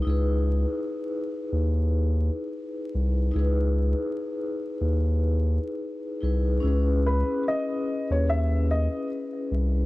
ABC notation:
X:1
M:4/4
L:1/16
Q:"Swing 16ths" 1/4=73
K:C#m
V:1 name="Upright piano"
z16 | z16 | z2 B2 d3 c e2 d2 z4 |]
V:2 name="Vibraphone"
[DEGB]16 | [DEGB]12- [DEGB]2 [DEGB]2 | [CEGB]16 |]
V:3 name="Sub bass" clef=bass
C,,3 z4 D,,4 z3 ^B,,,2 | C,,3 z4 D,,4 z3 ^B,,,2 | C,,3 z4 D,,4 z3 ^B,,,2 |]